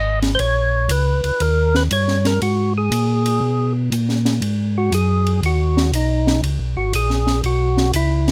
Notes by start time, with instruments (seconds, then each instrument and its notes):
Already playing: tonewheel organ G#1 D#5
0.22 snare, ride
0.35 tonewheel organ C5
0.39 tonewheel organ A#1 C#5, ride
0.89 tonewheel organ C#2 B4, hi-hat pedal, ride
1.24 tonewheel organ C#2, ride
1.40 tonewheel organ D#2 A#4, ride
1.75 tonewheel organ B4, snare
1.91 tonewheel organ G2 C#5, hi-hat pedal, ride
2.08 snare
2.25 tonewheel organ A#4, snare, ride
2.42 tonewheel organ G#2 F#4, ride
2.78 tonewheel organ G#4
2.91 tonewheel organ A#2, hi-hat pedal, ride
3.26 ride
3.41 tonewheel organ B2
3.92 tonewheel organ A#2, hi-hat pedal, ride
4.09 snare
4.25 snare, ride
4.41 tonewheel organ G#2, ride
4.78 tonewheel organ F#4
4.92 tonewheel organ F#2 G#4, hi-hat pedal, ride
5.27 ride
5.42 tonewheel organ D#2 F#4, ride
5.77 snare
5.92 tonewheel organ B1 D#4, hi-hat pedal, ride
6.27 snare
6.42 tonewheel organ C#2, ride
6.59 tonewheel organ B1
6.77 tonewheel organ G#1 F#4
6.93 tonewheel organ A#1 G#4, hi-hat pedal, ride
7.10 snare
7.27 snare
7.43 tonewheel organ B1 F#4, ride
7.77 snare
7.93 tonewheel organ C#2 E4, hi-hat pedal, ride
8.28 snare, ride